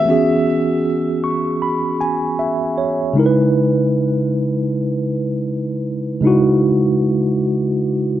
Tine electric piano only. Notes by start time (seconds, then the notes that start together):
Already playing: G#4
0.05 E3 B3 C#4
0.10 F#4 G#4
1.24 C#6
1.62 B5
2.01 G#5
2.39 E5
2.78 C#5
3.13 C#3 G#3 D#4
3.18 E4 A#4
3.26 B4
6.21 C#3 G#3 D#4
6.25 E4 F#4